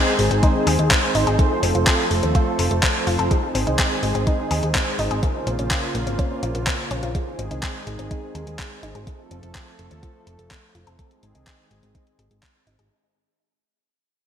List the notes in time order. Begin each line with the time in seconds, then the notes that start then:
Already playing: D#3 G#3 C4 D#4 G#4 C5
0.19 G#1 G#3 C4 D#4 G#4 C5, open hi-hat
0.31 G#1 C4, closed hi-hat
0.43 D#4, kick, closed hi-hat
0.55 C4 D#4 G#4 C5
0.67 D#2 G#4, open hi-hat
0.79 D#2 G#3, closed hi-hat
0.91 C4, kick, clap, closed hi-hat
1.03 C4 D#4 G#4 C5
1.15 G#1 D#4, open hi-hat
1.27 G#1 G#4, closed hi-hat
1.39 F3 A3 C4 F4 A4 C5, kick, closed hi-hat
1.63 F1 C4, open hi-hat
1.75 F1 C4 F4 A4 C5, closed hi-hat
1.87 A4, kick, clap, closed hi-hat
2.11 F1 A3 C4 F4 A4 C5, open hi-hat
2.23 D#2 C4, closed hi-hat
2.35 F4, kick, closed hi-hat
2.47 C4 F4 A4 C5
2.59 F1 A4, open hi-hat
2.71 F1 A3, closed hi-hat
2.83 C4, kick, clap, closed hi-hat
2.95 C4 F4 A4 C5
3.07 F1 F4, open hi-hat
3.19 F1 A4, closed hi-hat
3.31 D#3 G#3 C4 D#4 G#4 C5, kick, closed hi-hat
3.55 G#1 C4, open hi-hat
3.67 C2 C4 D#4 G#4 C5, closed hi-hat
3.79 G#4, kick, clap, closed hi-hat
4.03 G#1 G#3 C4 D#4 G#4 C5, open hi-hat
4.15 G#1 C4, closed hi-hat
4.27 D#4, kick, closed hi-hat
4.39 C4 D#4 G#4 C5
4.51 D#2 G#4, open hi-hat
4.63 D#2 G#3, closed hi-hat
4.75 C4, kick, clap, closed hi-hat
4.87 C4 D#4 G#4 C5
4.99 G#1 D#4, open hi-hat
5.11 G#1 G#4, closed hi-hat
5.23 C#3 A#3 C#4 F4 A#4 C5, kick, closed hi-hat
5.47 A#1 C4, closed hi-hat
5.59 A#1 C#4 F4 A#4 C5, closed hi-hat
5.71 F4, kick, clap, closed hi-hat
5.95 A#1 A#3 C#4 F4 A#4 C5, closed hi-hat
6.07 G#1 C4, closed hi-hat
6.19 C#4, kick, closed hi-hat
6.31 C#4 F4 A#4 C5
6.43 A#1 F4, closed hi-hat
6.55 A#1 A#3, closed hi-hat
6.67 C4, kick, clap, closed hi-hat
6.79 C#4 F4 A#4 C5
6.91 A#1 C#4, closed hi-hat
7.03 A#1 F4, closed hi-hat
7.15 D#3 G#3 C4 D#4 G#4 C5, kick, closed hi-hat
7.39 G#1 C4, closed hi-hat
7.51 C2 C4 D#4 G#4 C5, closed hi-hat
7.63 G#4, kick, clap, closed hi-hat
7.87 G#1 G#3 C4 D#4 G#4 C5, closed hi-hat
7.99 G#1 C4, closed hi-hat
8.11 D#4, kick, closed hi-hat
8.23 C4 D#4 G#4 C5
8.35 D#2 G#4, closed hi-hat
8.47 D#2 G#3, closed hi-hat
8.59 C4, kick, clap, closed hi-hat
8.71 C4 D#4 G#4 C5
8.83 G#1 D#4, closed hi-hat
8.95 G#1 G#4, closed hi-hat
9.07 F3 A3 C4 F4 A4 C5, kick, closed hi-hat
9.31 F1 C4, closed hi-hat
9.43 F1 C4 F4 A4 C5, closed hi-hat
9.55 A4, kick, clap, closed hi-hat
9.79 F1 A3 C4 F4 A4 C5, closed hi-hat
9.91 D#2 C4, closed hi-hat
10.03 F4, kick, closed hi-hat
10.15 C4 F4 A4 C5
10.27 F1 A4, closed hi-hat
10.39 F1 A3, closed hi-hat
10.51 C4, kick, clap, closed hi-hat
10.63 C4 F4 A4 C5
10.75 F1 F4, closed hi-hat
10.87 F1 A4, closed hi-hat
10.99 D#3 G#3 C4 D#4 G#4 C5, kick, closed hi-hat
11.11 closed hi-hat
11.23 G#1 C4, closed hi-hat
11.35 C2 C4 D#4 G#4 C5, closed hi-hat
11.47 G#4, kick, clap, closed hi-hat
11.71 G#1 G#3 C4 D#4 G#4 C5, closed hi-hat
11.83 G#1 C4, closed hi-hat
11.95 D#4, kick, closed hi-hat
12.07 C4 D#4 G#4 C5, closed hi-hat
12.19 G#1 G#4, closed hi-hat
12.31 G#1 G#3, closed hi-hat
12.43 C4, kick, clap, closed hi-hat
12.55 C4 D#4 G#4 C5, closed hi-hat
12.67 G#1 D#4, closed hi-hat
12.79 G#1 G#4, closed hi-hat